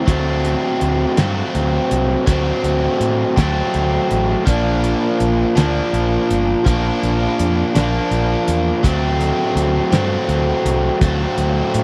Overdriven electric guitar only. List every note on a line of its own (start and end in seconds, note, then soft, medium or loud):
0.05 1.20 F#3 medium
0.05 1.19 A3 medium
0.05 1.17 C4 medium
1.17 2.25 F#3 medium
1.17 2.26 A3 medium
1.17 2.25 C4 medium
2.26 3.34 F#3 medium
2.26 3.35 A3 medium
2.26 3.35 C4 medium
3.36 4.45 F#3 medium
3.36 4.45 A3 medium
3.36 4.44 C4 medium
4.45 5.59 F3 medium
4.45 5.57 A#3 medium
4.45 5.55 D4 medium
5.55 6.64 F3 medium
5.55 6.64 A#3 medium
5.55 6.68 D4 medium
6.65 7.72 F3 medium
6.65 7.74 A#3 medium
6.65 7.75 D4 loud
7.75 8.83 F3 medium
7.75 8.83 A#3 medium
7.75 8.86 D4 medium
8.83 9.95 F#3 medium
8.83 9.93 A3 medium
8.83 9.91 C4 medium
9.92 11.00 F#3 medium
9.92 11.00 A3 medium
9.92 10.99 C4 medium
11.01 11.84 F#3 medium
11.01 11.84 A3 medium
11.01 11.84 C4 loud